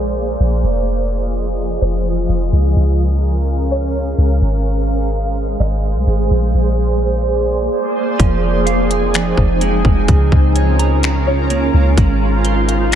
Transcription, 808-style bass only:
0, 0, Header, 1, 2, 480
1, 0, Start_track
1, 0, Key_signature, -4, "minor"
1, 0, Tempo, 472441
1, 647, Time_signature, 4, 2, 24, 8
1, 13160, End_track
2, 0, Start_track
2, 0, Title_t, "808-style bass"
2, 0, Program_c, 0, 38
2, 0, Note_on_c, 0, 34, 102
2, 367, Note_off_c, 0, 34, 0
2, 407, Note_on_c, 0, 34, 101
2, 637, Note_off_c, 0, 34, 0
2, 645, Note_on_c, 0, 29, 114
2, 1805, Note_off_c, 0, 29, 0
2, 1845, Note_on_c, 0, 29, 103
2, 2306, Note_off_c, 0, 29, 0
2, 2325, Note_on_c, 0, 29, 100
2, 2556, Note_off_c, 0, 29, 0
2, 2565, Note_on_c, 0, 37, 112
2, 2796, Note_off_c, 0, 37, 0
2, 2806, Note_on_c, 0, 37, 102
2, 4206, Note_off_c, 0, 37, 0
2, 4246, Note_on_c, 0, 37, 104
2, 4477, Note_off_c, 0, 37, 0
2, 4487, Note_on_c, 0, 32, 112
2, 5646, Note_off_c, 0, 32, 0
2, 5686, Note_on_c, 0, 32, 104
2, 6045, Note_on_c, 0, 36, 95
2, 6060, Note_off_c, 0, 32, 0
2, 6160, Note_off_c, 0, 36, 0
2, 6165, Note_on_c, 0, 32, 101
2, 6396, Note_off_c, 0, 32, 0
2, 6407, Note_on_c, 0, 34, 113
2, 6637, Note_off_c, 0, 34, 0
2, 6646, Note_on_c, 0, 34, 104
2, 7806, Note_off_c, 0, 34, 0
2, 8327, Note_on_c, 0, 29, 115
2, 9486, Note_off_c, 0, 29, 0
2, 9525, Note_on_c, 0, 29, 102
2, 9987, Note_off_c, 0, 29, 0
2, 10006, Note_on_c, 0, 29, 104
2, 10237, Note_off_c, 0, 29, 0
2, 10246, Note_on_c, 0, 37, 111
2, 10477, Note_off_c, 0, 37, 0
2, 10486, Note_on_c, 0, 37, 104
2, 11886, Note_off_c, 0, 37, 0
2, 11927, Note_on_c, 0, 37, 103
2, 12157, Note_off_c, 0, 37, 0
2, 12166, Note_on_c, 0, 32, 120
2, 13160, Note_off_c, 0, 32, 0
2, 13160, End_track
0, 0, End_of_file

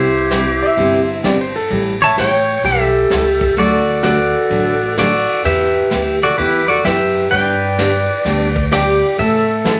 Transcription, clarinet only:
0, 0, Header, 1, 2, 480
1, 0, Start_track
1, 0, Key_signature, 1, "major"
1, 0, Tempo, 466926
1, 1754, Time_signature, 4, 2, 24, 8
1, 10073, End_track
2, 0, Start_track
2, 0, Title_t, "Clarinet"
2, 0, Program_c, 0, 71
2, 0, Note_on_c, 0, 67, 82
2, 1239, Note_off_c, 0, 67, 0
2, 2088, Note_on_c, 0, 76, 85
2, 2232, Note_off_c, 0, 76, 0
2, 2255, Note_on_c, 0, 73, 90
2, 2692, Note_off_c, 0, 73, 0
2, 2732, Note_on_c, 0, 69, 84
2, 3642, Note_off_c, 0, 69, 0
2, 3687, Note_on_c, 0, 69, 92
2, 4128, Note_off_c, 0, 69, 0
2, 4170, Note_on_c, 0, 69, 92
2, 5081, Note_off_c, 0, 69, 0
2, 5119, Note_on_c, 0, 69, 79
2, 5564, Note_off_c, 0, 69, 0
2, 5596, Note_on_c, 0, 71, 90
2, 6352, Note_off_c, 0, 71, 0
2, 6406, Note_on_c, 0, 69, 74
2, 6551, Note_off_c, 0, 69, 0
2, 6558, Note_on_c, 0, 67, 72
2, 6852, Note_off_c, 0, 67, 0
2, 6878, Note_on_c, 0, 69, 77
2, 7027, Note_off_c, 0, 69, 0
2, 7048, Note_on_c, 0, 71, 74
2, 7489, Note_off_c, 0, 71, 0
2, 7522, Note_on_c, 0, 74, 97
2, 8919, Note_off_c, 0, 74, 0
2, 8952, Note_on_c, 0, 67, 73
2, 9401, Note_off_c, 0, 67, 0
2, 9432, Note_on_c, 0, 69, 82
2, 10073, Note_off_c, 0, 69, 0
2, 10073, End_track
0, 0, End_of_file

